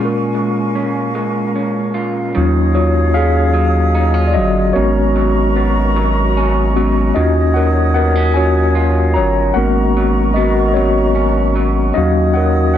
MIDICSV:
0, 0, Header, 1, 5, 480
1, 0, Start_track
1, 0, Key_signature, -6, "minor"
1, 0, Tempo, 800000
1, 1409, Time_signature, 6, 3, 24, 8
1, 7666, End_track
2, 0, Start_track
2, 0, Title_t, "Flute section"
2, 0, Program_c, 0, 73
2, 0, Note_on_c, 0, 70, 70
2, 0, Note_on_c, 0, 77, 66
2, 0, Note_on_c, 0, 80, 63
2, 0, Note_on_c, 0, 85, 75
2, 1241, Note_off_c, 0, 85, 0
2, 1258, Note_off_c, 0, 80, 0
2, 1394, Note_off_c, 0, 77, 0
2, 1395, Note_off_c, 0, 70, 0
2, 1405, Note_on_c, 0, 73, 73
2, 1406, Note_on_c, 0, 87, 83
2, 1409, Note_on_c, 0, 75, 70
2, 1409, Note_on_c, 0, 77, 70
2, 2833, Note_off_c, 0, 73, 0
2, 2833, Note_off_c, 0, 87, 0
2, 2834, Note_off_c, 0, 77, 0
2, 2846, Note_on_c, 0, 70, 78
2, 2846, Note_on_c, 0, 82, 73
2, 2846, Note_on_c, 0, 85, 83
2, 4105, Note_off_c, 0, 70, 0
2, 4273, Note_off_c, 0, 82, 0
2, 4273, Note_off_c, 0, 85, 0
2, 4288, Note_on_c, 0, 73, 80
2, 4292, Note_on_c, 0, 87, 87
2, 5566, Note_off_c, 0, 87, 0
2, 5714, Note_off_c, 0, 73, 0
2, 5720, Note_on_c, 0, 70, 75
2, 5722, Note_on_c, 0, 85, 85
2, 5725, Note_on_c, 0, 82, 73
2, 7010, Note_off_c, 0, 75, 0
2, 7150, Note_off_c, 0, 70, 0
2, 7151, Note_off_c, 0, 85, 0
2, 7152, Note_off_c, 0, 82, 0
2, 7171, Note_on_c, 0, 75, 69
2, 7173, Note_on_c, 0, 73, 74
2, 7173, Note_on_c, 0, 87, 90
2, 7666, Note_off_c, 0, 73, 0
2, 7666, Note_off_c, 0, 75, 0
2, 7666, Note_off_c, 0, 87, 0
2, 7666, End_track
3, 0, Start_track
3, 0, Title_t, "Tine electric piano"
3, 0, Program_c, 1, 4
3, 0, Note_on_c, 1, 46, 66
3, 0, Note_on_c, 1, 56, 64
3, 0, Note_on_c, 1, 61, 62
3, 0, Note_on_c, 1, 65, 62
3, 30, Note_on_c, 1, 70, 75
3, 66, Control_c, 1, 64, 127
3, 1381, Note_off_c, 1, 46, 0
3, 1384, Note_off_c, 1, 56, 0
3, 1388, Note_off_c, 1, 61, 0
3, 1393, Note_off_c, 1, 65, 0
3, 1412, Note_on_c, 1, 54, 53
3, 1415, Note_off_c, 1, 70, 0
3, 1415, Note_on_c, 1, 61, 55
3, 1416, Note_on_c, 1, 65, 64
3, 1417, Control_c, 1, 64, 0
3, 1538, Control_c, 1, 64, 127
3, 1649, Note_on_c, 1, 73, 84
3, 1654, Note_off_c, 1, 65, 0
3, 1661, Note_on_c, 1, 65, 64
3, 1879, Note_off_c, 1, 65, 0
3, 1885, Note_on_c, 1, 77, 111
3, 1896, Note_off_c, 1, 73, 0
3, 1898, Note_on_c, 1, 68, 86
3, 2106, Note_off_c, 1, 54, 0
3, 2108, Note_off_c, 1, 61, 0
3, 2343, Note_off_c, 1, 77, 0
3, 2349, Note_off_c, 1, 68, 0
3, 2563, Note_on_c, 1, 74, 76
3, 2602, Note_on_c, 1, 75, 100
3, 2607, Note_off_c, 1, 74, 0
3, 2617, Note_on_c, 1, 54, 80
3, 2837, Note_off_c, 1, 54, 0
3, 2839, Note_on_c, 1, 73, 103
3, 2844, Note_on_c, 1, 70, 57
3, 2848, Note_on_c, 1, 59, 55
3, 2850, Note_on_c, 1, 61, 55
3, 2851, Note_on_c, 1, 66, 82
3, 2853, Note_off_c, 1, 75, 0
3, 2857, Control_c, 1, 64, 0
3, 2965, Control_c, 1, 64, 127
3, 3780, Note_off_c, 1, 73, 0
3, 3787, Note_off_c, 1, 66, 0
3, 4046, Note_off_c, 1, 59, 0
3, 4049, Note_off_c, 1, 61, 0
3, 4052, Note_on_c, 1, 56, 48
3, 4054, Note_on_c, 1, 59, 46
3, 4056, Note_on_c, 1, 61, 43
3, 4057, Note_on_c, 1, 66, 56
3, 4262, Note_off_c, 1, 70, 0
3, 4266, Note_off_c, 1, 56, 0
3, 4267, Note_off_c, 1, 59, 0
3, 4269, Note_off_c, 1, 61, 0
3, 4269, Note_off_c, 1, 66, 0
3, 4287, Note_on_c, 1, 75, 101
3, 4292, Note_on_c, 1, 61, 58
3, 4295, Note_on_c, 1, 65, 53
3, 4298, Control_c, 1, 64, 0
3, 4299, Note_on_c, 1, 66, 78
3, 4406, Control_c, 1, 64, 127
3, 4523, Note_on_c, 1, 78, 93
3, 4535, Note_off_c, 1, 75, 0
3, 4538, Note_on_c, 1, 70, 72
3, 4610, Note_off_c, 1, 61, 0
3, 4611, Note_off_c, 1, 65, 0
3, 4614, Note_off_c, 1, 66, 0
3, 4757, Note_off_c, 1, 70, 0
3, 4757, Note_off_c, 1, 78, 0
3, 4765, Note_on_c, 1, 78, 98
3, 4780, Note_on_c, 1, 70, 78
3, 4990, Note_off_c, 1, 78, 0
3, 4998, Note_off_c, 1, 70, 0
3, 5004, Note_on_c, 1, 80, 105
3, 5015, Note_on_c, 1, 61, 53
3, 5018, Note_on_c, 1, 65, 47
3, 5020, Note_on_c, 1, 66, 58
3, 5022, Note_on_c, 1, 73, 81
3, 5228, Note_off_c, 1, 61, 0
3, 5230, Note_off_c, 1, 65, 0
3, 5231, Note_off_c, 1, 66, 0
3, 5471, Note_off_c, 1, 73, 0
3, 5483, Note_on_c, 1, 82, 94
3, 5500, Note_on_c, 1, 73, 79
3, 5501, Note_off_c, 1, 80, 0
3, 5718, Note_off_c, 1, 73, 0
3, 5723, Note_on_c, 1, 78, 104
3, 5733, Note_off_c, 1, 82, 0
3, 5734, Note_on_c, 1, 58, 58
3, 5736, Control_c, 1, 64, 0
3, 5737, Note_on_c, 1, 59, 54
3, 5739, Note_on_c, 1, 61, 55
3, 5741, Note_on_c, 1, 70, 82
3, 5742, Note_on_c, 1, 66, 64
3, 5846, Control_c, 1, 64, 127
3, 6050, Note_off_c, 1, 58, 0
3, 6052, Note_off_c, 1, 59, 0
3, 6053, Note_off_c, 1, 61, 0
3, 6055, Note_off_c, 1, 66, 0
3, 6191, Note_off_c, 1, 70, 0
3, 6204, Note_on_c, 1, 75, 89
3, 6220, Note_off_c, 1, 78, 0
3, 6223, Note_on_c, 1, 66, 73
3, 6400, Note_off_c, 1, 66, 0
3, 6403, Note_off_c, 1, 75, 0
3, 6410, Note_on_c, 1, 75, 70
3, 6443, Note_on_c, 1, 73, 93
3, 6450, Note_off_c, 1, 75, 0
3, 6457, Note_on_c, 1, 70, 51
3, 6458, Note_on_c, 1, 59, 45
3, 6460, Note_on_c, 1, 61, 45
3, 6461, Note_on_c, 1, 66, 70
3, 6669, Note_off_c, 1, 70, 0
3, 6670, Note_off_c, 1, 59, 0
3, 6671, Note_off_c, 1, 61, 0
3, 6962, Note_off_c, 1, 73, 0
3, 6972, Note_off_c, 1, 66, 0
3, 7163, Note_on_c, 1, 75, 98
3, 7174, Note_on_c, 1, 61, 56
3, 7177, Control_c, 1, 64, 0
3, 7179, Note_on_c, 1, 77, 53
3, 7182, Note_on_c, 1, 54, 64
3, 7184, Note_on_c, 1, 66, 72
3, 7279, Control_c, 1, 64, 127
3, 7400, Note_off_c, 1, 66, 0
3, 7402, Note_on_c, 1, 78, 94
3, 7413, Note_off_c, 1, 75, 0
3, 7421, Note_on_c, 1, 70, 70
3, 7628, Note_off_c, 1, 78, 0
3, 7639, Note_off_c, 1, 70, 0
3, 7642, Note_on_c, 1, 78, 88
3, 7666, Note_off_c, 1, 54, 0
3, 7666, Note_off_c, 1, 61, 0
3, 7666, Note_off_c, 1, 77, 0
3, 7666, Note_off_c, 1, 78, 0
3, 7666, End_track
4, 0, Start_track
4, 0, Title_t, "Clean electric guitar"
4, 0, Program_c, 2, 27
4, 0, Note_on_c, 2, 46, 71
4, 0, Note_on_c, 2, 56, 56
4, 0, Note_on_c, 2, 65, 62
4, 205, Note_off_c, 2, 56, 0
4, 207, Note_on_c, 2, 56, 53
4, 452, Note_on_c, 2, 61, 55
4, 683, Note_off_c, 2, 56, 0
4, 690, Note_on_c, 2, 56, 55
4, 930, Note_off_c, 2, 61, 0
4, 932, Note_on_c, 2, 61, 49
4, 1163, Note_off_c, 2, 65, 0
4, 1165, Note_on_c, 2, 65, 57
4, 1409, Note_on_c, 2, 51, 81
4, 1410, Note_off_c, 2, 46, 0
4, 1457, Note_off_c, 2, 56, 0
4, 1649, Note_on_c, 2, 54, 60
4, 1667, Note_off_c, 2, 65, 0
4, 1885, Note_off_c, 2, 61, 0
4, 1887, Note_on_c, 2, 61, 63
4, 2119, Note_off_c, 2, 54, 0
4, 2122, Note_on_c, 2, 54, 67
4, 2368, Note_on_c, 2, 63, 63
4, 2484, Note_off_c, 2, 63, 0
4, 2484, Note_on_c, 2, 65, 60
4, 2600, Note_off_c, 2, 54, 0
4, 2602, Note_on_c, 2, 54, 64
4, 2853, Note_on_c, 2, 44, 88
4, 2894, Note_off_c, 2, 65, 0
4, 3093, Note_off_c, 2, 54, 0
4, 3095, Note_on_c, 2, 54, 63
4, 3334, Note_off_c, 2, 61, 0
4, 3337, Note_on_c, 2, 59, 59
4, 3509, Note_off_c, 2, 51, 0
4, 3576, Note_off_c, 2, 54, 0
4, 3578, Note_on_c, 2, 54, 75
4, 3822, Note_on_c, 2, 61, 66
4, 4056, Note_off_c, 2, 54, 0
4, 4059, Note_on_c, 2, 54, 61
4, 4291, Note_off_c, 2, 44, 0
4, 4294, Note_on_c, 2, 51, 80
4, 4341, Note_off_c, 2, 59, 0
4, 4533, Note_off_c, 2, 54, 0
4, 4536, Note_on_c, 2, 54, 60
4, 4773, Note_on_c, 2, 59, 62
4, 4791, Note_off_c, 2, 61, 0
4, 4893, Note_off_c, 2, 59, 0
4, 4893, Note_on_c, 2, 61, 53
4, 5011, Note_off_c, 2, 54, 0
4, 5014, Note_on_c, 2, 54, 70
4, 5251, Note_on_c, 2, 65, 66
4, 5491, Note_off_c, 2, 54, 0
4, 5493, Note_on_c, 2, 54, 60
4, 5726, Note_on_c, 2, 44, 82
4, 5778, Note_off_c, 2, 65, 0
4, 5779, Note_off_c, 2, 61, 0
4, 5976, Note_off_c, 2, 54, 0
4, 5978, Note_on_c, 2, 54, 61
4, 6214, Note_on_c, 2, 59, 63
4, 6394, Note_off_c, 2, 51, 0
4, 6456, Note_off_c, 2, 54, 0
4, 6458, Note_on_c, 2, 54, 71
4, 6690, Note_on_c, 2, 61, 60
4, 6931, Note_off_c, 2, 54, 0
4, 6933, Note_on_c, 2, 54, 60
4, 7167, Note_off_c, 2, 44, 0
4, 7170, Note_on_c, 2, 51, 82
4, 7219, Note_off_c, 2, 59, 0
4, 7408, Note_off_c, 2, 54, 0
4, 7410, Note_on_c, 2, 54, 58
4, 7666, Note_off_c, 2, 51, 0
4, 7666, Note_off_c, 2, 54, 0
4, 7666, Note_off_c, 2, 61, 0
4, 7666, End_track
5, 0, Start_track
5, 0, Title_t, "Analog synth bass"
5, 0, Program_c, 3, 38
5, 1421, Note_on_c, 3, 39, 120
5, 2622, Note_on_c, 3, 31, 91
5, 2631, Note_off_c, 3, 39, 0
5, 2832, Note_off_c, 3, 31, 0
5, 2860, Note_on_c, 3, 32, 120
5, 4270, Note_off_c, 3, 32, 0
5, 4298, Note_on_c, 3, 39, 108
5, 5500, Note_on_c, 3, 31, 94
5, 5509, Note_off_c, 3, 39, 0
5, 5711, Note_off_c, 3, 31, 0
5, 5735, Note_on_c, 3, 32, 107
5, 7148, Note_off_c, 3, 32, 0
5, 7182, Note_on_c, 3, 39, 103
5, 7666, Note_off_c, 3, 39, 0
5, 7666, End_track
0, 0, End_of_file